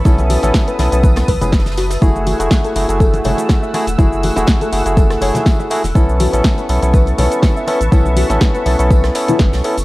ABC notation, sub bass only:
X:1
M:4/4
L:1/16
Q:"Swing 16ths" 1/4=122
K:Bmix
V:1 name="Sub bass" clef=bass
B,,,3 A,,, z2 B,,, B,,,3 B,,, F,,,4- F,,, | F,,,3 E,,, z2 F,,, F,,,3 F,,, z4 E,,, | F,,,3 E,,, z2 F,,, F,,,3 F,,, z4 E,,, | B,,,3 A,,, z2 B,,, B,,,3 B,,, z4 A,,, |
B,,,3 A,,, z2 B,,, B,,,3 z2 F,,, B,,, z F,,, |]